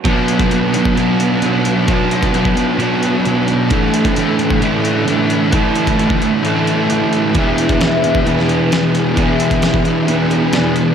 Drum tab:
HH |x-xxx-x-x-x-x-x-|x-xxx-x-x-x-x-x-|x-xxx-x-x-x-x-x-|x-xxx-x-x-x-x-x-|
SD |----------------|----------------|----------------|----------------|
BD |o--o---o--------|o--o-o----------|o--o---o--------|o--o-o----------|

HH |x-xxx-x-x-x-x-x-|x-xxx-x-x-x-x-x-|
SD |----o----o--o---|----o-------o---|
BD |o--o---o--------|o--o-o----------|